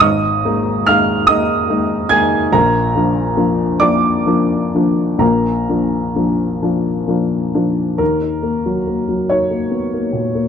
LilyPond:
<<
  \new Staff \with { instrumentName = "Upright piano" } { \time 6/8 \key bes \phrygian \tempo 4. = 47 <ees'' ees'''>4 <f'' f'''>8 <ees'' ees'''>4 <aes'' aes'''>8 | <bes' bes''>4. <d'' d'''>4. | <bes' bes''>2~ <bes' bes''>8 r8 | bes'4. des''4. | }
  \new Staff \with { instrumentName = "Upright piano" } { \time 6/8 \key bes \phrygian <aes,, aes,>8 <aes bes ees'>8 <aes bes ees'>8 <aes bes ees'>8 <aes bes ees'>8 <aes bes ees'>8 | <bes,, bes,>8 <f bes d'>8 <f bes d'>8 <f bes d'>8 <f bes d'>8 <f bes d'>8 | <bes,, bes,>8 <f bes d'>8 <f bes d'>8 <f bes d'>8 <f bes d'>8 <f bes d'>8 | ees,16 ees'16 bes16 ges16 bes16 ges16 ees'16 bes16 ces'16 bes16 bes,16 bes16 | }
>>